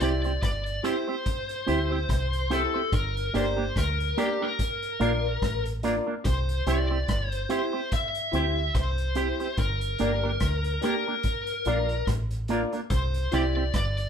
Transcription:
0.00 C2 C4 E4 G4 C5 D5 E5, closed hi-hat
0.24 C4 E4 G4 C5, closed hi-hat
0.42 G1 D5, kick, cross-stick, closed hi-hat
0.66 closed hi-hat
0.83 C4 E4 G4 C5 E5, closed hi-hat
1.08 C4 E4 G4 C5
1.26 kick, closed hi-hat
1.49 closed hi-hat
1.66 D2 C4 E4 G4 C5 E5, closed hi-hat
1.91 C4 E4 G4 C5
2.09 C2, kick, cross-stick, closed hi-hat
2.33 closed hi-hat
2.50 C4 E4 G4 A4 C5 E5, closed hi-hat
2.74 C4 E4 G4 C5 E5
2.92 G1 A#4, kick, closed hi-hat
3.17 closed hi-hat
3.34 G1 A#3 D4 G4 A#4 C5 D5, closed hi-hat
3.57 A#3 D4 G4 A#4
3.76 D2 A#4, kick, cross-stick, closed hi-hat
4.00 closed hi-hat
4.17 A#3 D4 G4 A#4 D5, closed hi-hat
4.41 A#3 D4 G4 A#4
4.59 kick, closed hi-hat
4.82 closed hi-hat
5.00 A#1 A#3 D4 F4 A#4 D5, closed hi-hat
5.42 A1, kick, cross-stick, closed hi-hat
5.65 closed hi-hat
5.83 A#3 D4 F4 A#4 D5, closed hi-hat
6.07 A#3 D4 F4 A#4 D5
6.25 C2 C5, kick, closed hi-hat
6.49 closed hi-hat
6.67 C2 C4 E4 G4 C5 D5 E5, closed hi-hat
6.91 C4 E4 G4 C5
7.08 G1, kick, cross-stick, closed hi-hat
7.29 C5, closed hi-hat
7.49 C4 E4 G4 C5 E5, closed hi-hat
7.73 C4 E4 G4 C5
7.92 E5, kick, closed hi-hat
8.15 closed hi-hat
8.32 D2 C4 E4 G4 C5 E5, closed hi-hat
8.75 C2 C5, kick, cross-stick, closed hi-hat
8.98 closed hi-hat
9.15 C4 E4 G4 C5 E5, closed hi-hat
9.40 C4 E4 G4 C5 E5, closed hi-hat
9.57 G1 A#4, kick, closed hi-hat
9.81 closed hi-hat
9.98 G1 A#3 D4 G4 A#4 D5, closed hi-hat
10.24 A#3 D4 G4 A#4
10.40 D2, kick, cross-stick, closed hi-hat
10.64 closed hi-hat
10.81 A#3 D4 G4 A#4 D5, closed hi-hat
11.08 A#3 D4 G4 A#4
11.23 kick, closed hi-hat
11.47 closed hi-hat
11.65 A#1 A#3 D4 F4 A#4 D5, closed hi-hat
11.89 closed hi-hat
12.07 A1, kick, cross-stick, closed hi-hat
12.31 closed hi-hat
12.48 A#3 D4 F4 A#4 D5, closed hi-hat
12.72 A#3 D4 F4 A#4 D5, closed hi-hat
12.90 C2 C5, kick, closed hi-hat
13.14 closed hi-hat
13.32 C2 C4 E4 G4 C5 D5 E5, closed hi-hat
13.57 C4 E4 G4 C5
13.73 G1 D5, kick, cross-stick, closed hi-hat
13.97 closed hi-hat

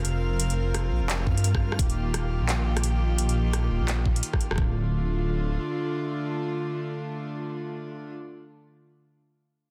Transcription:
Already playing: C4 F4 A#4 F5
0.04 F1, closed hi-hat
0.40 closed hi-hat
0.50 closed hi-hat
0.74 cross-stick, closed hi-hat
0.92 A#1
1.02 F1
1.10 clap, closed hi-hat
1.20 cross-stick
1.27 G2, kick
1.37 closed hi-hat
1.44 closed hi-hat
1.55 kick, cross-stick
1.72 cross-stick
1.79 D#1 D#3 A#3 G4, kick, closed hi-hat
1.90 closed hi-hat
2.14 cross-stick, closed hi-hat
2.31 D#1
2.42 A#1
2.49 clap, closed hi-hat
2.77 cross-stick, closed hi-hat
2.83 A#1, closed hi-hat
3.18 closed hi-hat
3.29 closed hi-hat
3.53 cross-stick, closed hi-hat
3.71 D#1
3.81 A#1
3.88 clap, closed hi-hat
3.99 cross-stick
4.06 kick
4.16 closed hi-hat
4.23 closed hi-hat
4.33 kick, cross-stick
4.41 closed hi-hat
4.51 F1, cross-stick
4.56 D1 A3, kick, cross-stick
4.58 D3 D4 F4, cross-stick
4.64 cross-stick

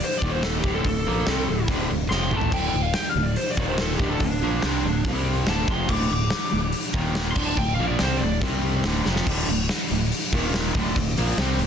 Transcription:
0.00 open hi-hat
0.04 C5
0.17 D5
0.22 D#1 D#2 A#2 D#3, kick
0.31 C5
0.43 A4, snare, open hi-hat
0.59 G4
0.64 D1 D2 A2 D3, kick
0.74 A4
0.84 D1 D2 A2 A4, kick, open hi-hat
1.06 A#1 A#2 F3 A#3
1.27 C2 C3 G3 C4, snare, open hi-hat
1.48 D1 D2 A2
1.68 D1 D2 A2 D3, kick, open hi-hat
1.90 D1 D2 A2
2.10 F1 F2 C3 F3 C6, snare
2.31 A1 A2 E3 A3, mid tom
2.38 A5, floor tom
2.52 D1 D2 A2 D3 G5, kick, crash
2.67 G5
2.73 D1 D2 A2
2.82 F5
2.94 G5, snare, open hi-hat
3.09 F5
3.15 D1 D2 A2
3.23 D5
3.36 C5, open hi-hat
3.51 D5
3.57 D#1 D#2 A#2 D#3, kick
3.68 C5
3.78 A4, snare, open hi-hat
3.95 G4
3.99 D1 D2 A2 D3, kick
4.10 A4
4.20 D1 D2 A2, kick, open hi-hat
4.24 D4
4.42 A#1 A#2 F3 A#3
4.62 C2 C3 G3 C4, snare, open hi-hat
4.85 D1 D2 A2
5.05 C2 C3 G3 C4, kick, open hi-hat
5.47 D1 D2 A2 D3 A5, snare, open hi-hat
5.68 F1 F2 C3 F3 C6, kick
5.89 D1 D2 A2 D3 D6, kick, crash
6.11 D1 D2 A2 D6
6.30 snare, open hi-hat
6.52 D1 D2 A2
6.72 open hi-hat
6.94 D#1 D#2 A#2 D#3, kick
7.15 snare, open hi-hat
7.32 C6, crash
7.36 D1 D2 A2 D3, kick
7.45 A5
7.57 D1 D2 A2 G5, kick
7.74 F5
7.79 A#1 A#2 F3 A#3
7.88 D5
7.99 C2 C3 G3 C4, snare, open hi-hat
8.03 C5
8.17 D5
8.22 D1 D2 A2
8.41 C2 C3 G3 C4, kick, open hi-hat
8.84 D1 D2 A2 D3, snare, open hi-hat
9.06 F1 F2 C3 F3, snare
9.16 snare
9.27 D1 D2 A2 D3, kick, crash
9.48 D1 D2 A2, open hi-hat
9.69 snare, open hi-hat
9.91 D1 D2 A2, open hi-hat
10.12 open hi-hat
10.33 D#1 D#2 A#2 D#3, kick
10.54 snare, open hi-hat
10.75 D1 D2 A2 D3, kick, open hi-hat
10.96 D1 D2 A2, kick, open hi-hat
11.17 A#1 A#2 F3 A#3, open hi-hat
11.37 C2 C3 G3 C4, snare, open hi-hat
11.59 D1 D2 A2, open hi-hat

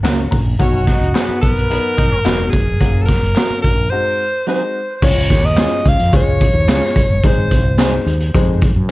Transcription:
0.03 C#2 F#3 A#3 C#4 F#4 A#4 F#5, snare, clap, closed hi-hat, tambourine
0.31 A#1 A#5, kick, open hi-hat, tambourine
0.59 B1 F#3 B3 C#4 D#4 F#4 C#5, kick, closed hi-hat, tambourine
0.87 D#4 D#5, kick, snare, closed hi-hat, tambourine
1.01 C#2, closed hi-hat
1.14 F#3 B3 D#4 F#4 G#4 B4, snare, clap, closed hi-hat, tambourine
1.28 muted fretless electric bass stroke
1.42 B1 A#4, kick, closed hi-hat, tambourine
1.57 closed hi-hat
1.70 F#3 B3 D#4 F#4 B4, closed hi-hat
1.97 B1 D#4 D#5, kick, closed hi-hat, tambourine
2.12 G#1
2.25 E1 F#3 B3 D#4 F#4 B4, snare, clap, closed hi-hat, tambourine
2.50 F1 G#4, kick, closed hi-hat, tambourine
2.80 F#1 F#3 A#3 C#4 F#4, kick, closed hi-hat, tambourine
3.02 A4 A#4
3.09 kick, snare, closed hi-hat, tambourine
3.23 F#1, closed hi-hat
3.36 F#3 A#3 C#4 F#4 A#4, snare, clap, closed hi-hat, tambourine
3.50 muted fretless electric bass stroke
3.62 A#1 A#4, kick, closed hi-hat, tambourine
3.90 G#3 C4 D#4 F#4 C5
4.47 F#3 G#3 C4 D#4 F#4 G#4 C5
4.96 C5
5.02 C#2 G#3 C#4 F4 G#4 C#5, kick, crash, tambourine
5.30 D#2, kick, snare, closed hi-hat, tambourine
5.45 D#5
5.57 G#3 C#4 F4 G#4 C#5, snare, clap, closed hi-hat, tambourine
5.85 C#2 F5, kick, closed hi-hat, tambourine
5.99 F2, closed hi-hat
6.13 C#2 G#3 C#4 F4 G#4 C#5, kick, closed hi-hat, tambourine
6.40 kick, closed hi-hat
6.53 D#2
6.67 C#2 G#3 C#4 F4 G#4 C#5, snare, clap, closed hi-hat, tambourine
6.83 snare
6.96 F#1, kick, closed hi-hat, tambourine
7.10 G1
7.23 G#1 G#3 C4 D#4 G#4 C5, kick, closed hi-hat, tambourine
7.51 C2, kick, closed hi-hat, tambourine
7.78 G#3 C4 D#4 G#4 C5, snare, clap, closed hi-hat, tambourine
8.06 D#2, closed hi-hat, tambourine
8.20 closed hi-hat
8.34 F2 G#3 C4 D#4 G#4 C5, kick, closed hi-hat
8.61 kick, closed hi-hat, tambourine
8.76 F#2

